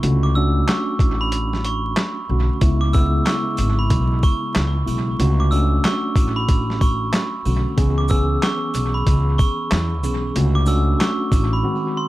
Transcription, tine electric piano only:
0.03 0.33 D3 medium
0.03 0.33 A3 medium
0.03 0.34 C#4 medium
0.03 0.34 F#4 loud
0.36 2.18 A3 medium
0.36 2.18 C#4 medium
0.36 2.18 D4 medium
0.36 2.18 F#4 loud
2.29 2.59 D3 medium
2.29 2.60 A3 medium
2.29 2.60 C#4 medium
2.29 2.60 F#4 medium
2.61 2.91 C#3 medium
2.61 2.92 G#3 medium
2.61 2.92 B3 medium
2.61 2.92 E4 loud
2.93 4.75 C#3 medium
2.93 4.75 G#3 medium
2.93 4.76 B3 medium
2.93 4.76 E4 loud
4.85 5.16 C#3 medium
4.85 5.17 G#3 medium
4.85 5.17 B3 medium
4.85 5.17 E4 medium
5.19 5.49 D3 medium
5.19 5.50 A3 medium
5.19 5.50 C#4 medium
5.19 5.50 F#4 loud
5.52 7.34 A3 medium
5.52 7.34 C#4 medium
5.52 7.34 D4 medium
5.52 7.35 F#4 loud
7.45 7.76 D3 medium
7.45 7.76 A3 medium
7.45 7.76 C#4 medium
7.45 7.76 F#4 medium
7.76 8.07 E3 medium
7.76 8.07 B3 medium
7.76 8.07 C#4 medium
7.76 8.08 G#4 loud
8.09 9.91 E3 medium
8.09 9.92 B3 medium
8.09 9.92 C#4 medium
8.09 9.92 G#4 loud
10.03 10.33 E3 medium
10.03 10.33 B3 medium
10.03 10.34 C#4 medium
10.03 10.34 G#4 medium
10.36 10.66 D3 medium
10.36 10.66 A3 medium
10.36 10.66 C#4 medium
10.36 10.67 F#4 loud
10.66 11.64 A3 medium
10.66 11.64 C#4 medium
10.66 11.64 D4 medium
10.66 11.63 F#4 loud
11.63 12.08 D#3 medium
11.63 12.08 G#3 medium
11.63 12.08 C4 medium
11.63 12.08 F#4 loud

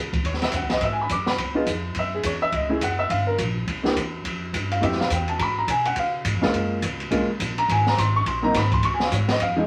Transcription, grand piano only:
0.26 0.42 C#5 medium
0.43 0.53 E5 medium
0.56 0.71 F#5 medium
0.71 0.81 D#5 medium
0.84 0.92 E5 medium
0.93 1.01 G#5 medium
1.02 1.10 B5 medium
1.12 1.28 D6 loud
1.28 1.54 B5 medium
1.54 1.65 B3 medium
1.54 1.65 D#4 medium
1.54 1.66 F4 medium
1.54 1.66 G#4 medium
1.99 2.14 E5 medium
2.15 2.25 G#4 medium
2.26 2.42 C#5 medium
2.42 2.53 E5 loud
2.54 2.80 D#5 medium
2.69 2.80 A3 medium
2.69 2.80 C#4 medium
2.69 2.80 E4 medium
2.69 2.80 G#4 medium
2.83 2.99 F#5 loud
2.99 3.10 E5 loud
3.11 3.27 F5 medium
3.27 3.34 A#4 medium
3.83 3.94 A#3 medium
3.83 3.94 D4 medium
3.83 3.95 E4 medium
3.83 3.95 G4 medium
4.72 4.82 F5 medium
4.81 4.97 A3 medium
4.81 4.97 C4 medium
4.81 4.98 E4 medium
4.81 4.98 G4 medium
4.81 4.99 E5 medium
5.00 5.11 F5 medium
5.12 5.28 G5 medium
5.29 5.39 A5 loud
5.38 5.40 A#5 medium
5.42 5.58 B5 loud
5.58 5.68 A#5 medium
5.70 5.86 G#5 medium
5.86 5.96 F#5 loud
5.99 6.80 F5 medium
6.41 6.79 G#3 medium
6.41 6.80 A#3 medium
6.41 6.80 C#4 medium
6.41 6.80 F4 medium
7.10 7.26 G#3 medium
7.10 7.27 A#3 medium
7.10 7.27 C#4 medium
7.10 7.27 F4 medium
7.58 7.69 A#5 loud
7.72 7.87 G#5 medium
7.88 7.98 A#5 loud
7.99 8.15 C6 loud
8.16 8.26 C#6 loud
8.28 8.43 C6 medium
8.43 8.53 F#3 medium
8.43 8.53 A#3 medium
8.43 8.53 C4 medium
8.43 8.54 D#4 medium
8.43 8.54 A#5 loud
8.57 8.72 B5 medium
8.74 8.83 C6 loud
8.85 8.93 C#6 loud
8.94 9.02 G#5 medium
9.04 9.12 F5 medium
9.13 9.29 C#5 medium
9.30 9.40 D#5 medium
9.42 9.58 F5 medium
9.56 9.67 F3 medium
9.56 9.67 G#3 medium
9.56 9.67 C4 medium
9.56 9.67 D#4 medium
9.56 9.67 G#4 medium

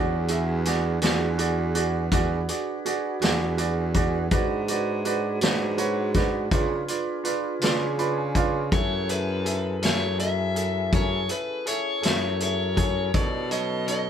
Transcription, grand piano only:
0.00 0.20 F#4 medium
0.00 0.20 G#4 medium
0.00 0.21 D5 medium
0.29 0.57 F#4 medium
0.29 0.57 G#4 medium
0.29 0.57 E5 medium
0.66 0.93 F#4 medium
0.66 0.94 G#4 medium
0.66 0.94 D5 medium
1.02 1.30 F#4 medium
1.02 1.30 G#4 medium
1.02 1.30 D5 medium
1.38 1.66 F#4 medium
1.38 1.66 G#4 medium
1.38 1.67 D5 medium
1.75 2.03 F#4 medium
1.75 2.03 G#4 medium
1.75 2.03 D5 medium
2.12 2.40 F#4 medium
2.12 2.40 G#4 medium
2.12 2.40 D5 medium
2.49 2.76 F#4 soft
2.49 2.77 G#4 soft
2.49 2.77 D5 medium
2.85 3.13 F#4 medium
2.85 3.13 G#4 soft
2.85 3.14 D5 medium
3.21 3.49 F#4 medium
3.21 3.50 G#4 medium
3.21 3.50 D5 medium
3.58 3.86 F#4 medium
3.58 3.86 G#4 medium
3.58 3.86 D5 medium
3.94 4.23 F#4 medium
3.94 4.23 G#4 medium
3.94 4.23 D5 medium
4.32 4.60 F#4 medium
4.32 4.60 B4 medium
4.32 4.60 D5 medium
4.68 4.96 F#4 medium
4.68 4.97 B4 medium
4.68 4.97 D5 medium
5.05 5.33 F#4 medium
5.05 5.33 B4 medium
5.05 5.33 D5 medium
5.42 5.70 F#4 medium
5.42 5.70 B4 medium
5.42 5.70 D5 medium
5.78 6.06 F#4 medium
5.78 6.06 B4 medium
5.78 6.06 C#5 medium
6.15 6.43 F#4 medium
6.15 6.43 B4 medium
6.15 6.43 D5 medium
6.52 6.80 F4 medium
6.52 6.80 B4 medium
6.52 6.80 D5 medium
6.88 7.16 F4 soft
6.88 7.16 B4 soft
6.88 7.17 D5 medium
7.24 7.52 F4 medium
7.24 7.53 B4 medium
7.24 7.53 D5 medium
7.62 7.90 F4 medium
7.62 7.90 B4 medium
7.62 7.90 D5 medium
7.98 8.26 F4 medium
7.98 8.27 B4 medium
7.98 8.27 D5 medium
7.98 8.16 B5 soft
8.18 8.35 G#5 medium
8.35 8.63 F4 medium
8.35 8.64 B4 medium
8.35 8.64 D5 medium
8.35 8.70 F5 medium
8.72 9.00 G#4 medium
8.72 9.00 A4 soft
8.72 9.00 E5 medium
9.09 9.37 G#4 soft
9.09 9.37 A4 soft
9.09 9.37 E5 medium
9.45 9.73 G#4 soft
9.45 9.74 A4 soft
9.45 9.74 E5 medium
9.82 10.10 G#4 medium
9.82 10.10 A4 soft
9.82 10.10 E5 medium
10.18 10.47 G#4 medium
10.18 10.47 A4 soft
10.18 10.47 E5 medium
10.55 10.83 G#4 soft
10.55 10.83 A4 soft
10.55 10.84 E5 medium
10.92 11.20 G#4 medium
10.92 11.20 A4 soft
10.92 11.21 E5 medium
11.29 11.57 G#4 soft
11.29 11.57 A4 soft
11.29 11.58 E5 soft
11.66 11.94 G#4 medium
11.66 11.94 A4 soft
11.66 11.94 E5 medium
12.02 12.31 G#4 medium
12.02 12.31 A4 soft
12.02 12.31 E5 medium
12.40 12.68 G#4 medium
12.40 12.68 A4 soft
12.40 12.69 E5 medium
12.76 13.05 G#4 medium
12.76 13.05 A4 soft
12.76 13.05 C#5 medium
13.14 13.42 D#4 medium
13.14 13.42 A4 soft
13.14 13.42 C#5 medium
13.50 13.79 D#4 soft
13.50 13.79 A4 soft
13.50 13.79 C#5 medium
13.88 14.10 D#4 medium
13.88 14.10 A4 soft
13.88 14.10 C#5 medium

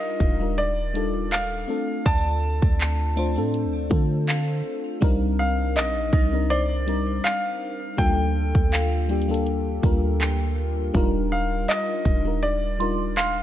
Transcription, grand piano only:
0.00 0.60 D#5 medium
0.58 1.34 D5 medium
1.32 2.08 F5 loud
2.06 4.61 A5 loud
5.39 5.77 F5 medium
5.76 6.53 D#5 medium
6.50 7.26 D5 medium
7.24 8.00 F5 loud
7.98 10.54 G5 loud
11.32 11.70 F5 medium
11.69 12.45 D#5 medium
12.43 13.19 D5 medium
13.17 13.43 F5 loud

